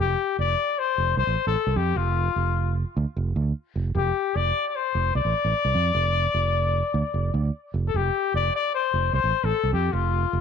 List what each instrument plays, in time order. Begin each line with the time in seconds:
0.00 fretless electric bass F1, trumpet G4
0.39 fretless electric bass F1, trumpet D5
0.79 trumpet C5
0.98 fretless electric bass F1
1.17 fretless electric bass C2, trumpet C5
1.27 fretless electric bass A1
1.47 fretless electric bass A1, trumpet A4
1.67 fretless electric bass C2
1.76 fretless electric bass F2, trumpet G4
1.96 fretless electric bass F1, trumpet F4
2.36 fretless electric bass F1
2.97 fretless electric bass D2
3.16 fretless electric bass F1
3.36 fretless electric bass D2
3.76 fretless electric bass F1
3.95 fretless electric bass F1, trumpet G4
4.35 fretless electric bass F1, trumpet D5
4.68 trumpet D5
4.76 trumpet C5
4.95 fretless electric bass F1
5.15 fretless electric bass C2, trumpet D5
5.25 fretless electric bass A1
5.45 fretless electric bass A1
5.65 fretless electric bass C2
5.75 fretless electric bass F2
5.95 fretless electric bass F1
6.34 fretless electric bass F1
6.94 fretless electric bass D2
7.14 fretless electric bass F1
7.34 fretless electric bass D2
7.74 fretless electric bass F1
7.88 trumpet A4
7.94 fretless electric bass F1, trumpet G4
8.34 fretless electric bass F1, trumpet D5
8.55 trumpet D5
8.74 trumpet C5
8.94 fretless electric bass F1
9.13 fretless electric bass C2, trumpet C5
9.24 fretless electric bass A1
9.44 fretless electric bass A1, trumpet A4
9.63 fretless electric bass C2
9.73 fretless electric bass F2, trumpet G4
9.93 fretless electric bass F1, trumpet F4
10.33 fretless electric bass F1